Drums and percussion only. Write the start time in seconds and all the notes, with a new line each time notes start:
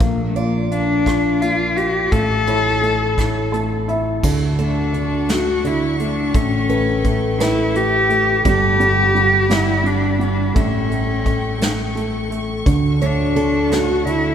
0.00 kick, closed hi-hat
0.36 closed hi-hat
0.71 closed hi-hat
1.06 kick, cross-stick, closed hi-hat
1.42 closed hi-hat
1.77 closed hi-hat
2.12 kick, closed hi-hat
2.48 closed hi-hat
2.83 closed hi-hat
3.18 kick, cross-stick, closed hi-hat
3.54 closed hi-hat
3.89 closed hi-hat
4.23 kick, crash
4.59 closed hi-hat
4.94 closed hi-hat
5.29 snare, closed hi-hat
5.64 closed hi-hat
5.99 closed hi-hat
6.34 kick, closed hi-hat
6.70 closed hi-hat
7.04 kick, closed hi-hat
7.40 snare, closed hi-hat
7.75 closed hi-hat
8.10 closed hi-hat
8.45 kick, closed hi-hat
8.80 closed hi-hat
9.16 closed hi-hat
9.50 snare, closed hi-hat
9.86 closed hi-hat
10.21 closed hi-hat
10.56 kick, closed hi-hat
10.91 closed hi-hat
11.26 kick, closed hi-hat
11.61 snare, closed hi-hat
11.97 closed hi-hat
12.32 closed hi-hat
12.66 kick, closed hi-hat
13.02 closed hi-hat
13.37 closed hi-hat
13.71 snare, closed hi-hat
14.07 closed hi-hat